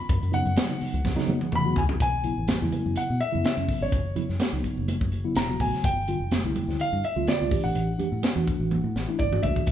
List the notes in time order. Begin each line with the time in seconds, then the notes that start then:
Already playing: B3 C#4 B5
0.09 F#2 E3 G#3 F#4, kick, closed hi-hat, muted conga
0.23 F#2, closed hi-hat
0.32 C#3 F#3 B3 D#4 F#5, closed hi-hat
0.46 F#2, closed hi-hat
0.56 F#3 B3 C#4, snare, closed hi-hat, high conga
0.69 C#3 F#3 B3 D#4, closed hi-hat
0.81 muted fingered electric bass stroke, open hi-hat
0.93 C#2, closed hi-hat
1.05 kick, snare, muted conga, low conga
1.16 C#3 F#3 B3 D#4, snare
1.28 F#3, muted conga, high conga
1.41 high tom
1.51 E2 B3 F#4, mid tom, high conga
1.55 B5
1.65 C#3 F#3 B3 F#4
1.76 C#2 G#5, floor tom, muted conga
1.89 B3 C#4, floor tom
2.00 B1 G#5, kick, closed hi-hat, muted conga
2.23 C#3 F#3 B3 E4, closed hi-hat
2.37 A1 B3 E4
2.48 snare, closed hi-hat, high conga
2.61 E2 C#3 F#3 B3 E4
2.72 closed hi-hat, muted conga, high conga
2.86 F#2
2.96 F#5, muted fingered electric bass stroke, closed hi-hat, muted conga
3.10 B2
3.20 E5, closed hi-hat, muted conga
3.32 F#2 C#3 F#3 B3 E4
3.44 E5, snare, closed hi-hat, high conga
3.56 F#2 C#3 F#3 B3 C#4
3.68 kick, open hi-hat
3.81 G#1 C#5
3.92 F#1, kick, closed hi-hat, muted conga
4.15 C#3 F#3 B3 E4, closed hi-hat, low conga
4.29 F#2 B3 D#4, snare
4.40 snare, closed hi-hat, high conga
4.53 C#2 C#3 F#3 B3 D#4
4.64 kick, closed hi-hat
4.77 F#1
4.88 closed hi-hat, muted conga, high conga
5.01 F#2, kick
5.12 F#1, closed hi-hat, muted conga
5.24 C#3 F#3 B3 E4
5.35 E1 A#5, snare, closed hi-hat
5.49 C#3 F#3 B3 F#4
5.60 A#1 G#5, kick, open hi-hat, high conga
5.72 muted fingered electric bass stroke, snare
5.84 G1 G5, kick, closed hi-hat, muted conga
6.08 D3 G3 C4 F4, closed hi-hat
6.20 F1
6.31 snare, closed hi-hat, high conga
6.44 C2 D3 G3 C4 E4
6.56 closed hi-hat, muted conga, high conga
6.68 D2, snare
6.79 F5, muted fingered electric bass stroke, closed hi-hat, muted conga
6.93 G2
7.04 E5, closed hi-hat, muted conga
7.16 D2 D3 G3 C4 F4
7.27 D5, snare, closed hi-hat, high conga
7.40 D2 D3 G3 C4 F4
7.50 E3 A3 D4 G4, muted fingered electric bass stroke, kick, open hi-hat
7.64 A1 F#5
7.75 A1, closed hi-hat, muted conga
7.98 E3 A3 D4 G4, closed hi-hat, low conga
8.12 A2 D4
8.23 snare, closed hi-hat, high conga
8.35 E2 E3 A3 D4 F#4
8.47 kick, closed hi-hat, muted conga
8.60 A1
8.71 high tom, muted conga, high conga
8.84 A2
8.96 A1, snare, muted conga
9.08 E3 A3 D4 E4
9.19 G1 D5, kick
9.31 E3 A3 D4 F#4, mid tom
9.43 C#2 E5, kick, high conga
9.56 muted fingered electric bass stroke, kick
9.67 B1, kick, closed hi-hat, muted conga